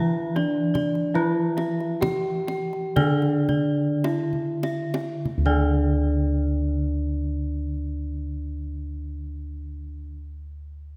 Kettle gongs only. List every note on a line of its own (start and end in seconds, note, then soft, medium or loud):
0.00 1.98 E3 medium
0.00 0.33 D4 medium
0.36 0.44 E4 medium
1.15 2.01 E4 medium
2.02 2.10 E4 soft
2.98 6.52 D3 medium
4.04 4.12 E4 soft
5.38 10.08 D2 loud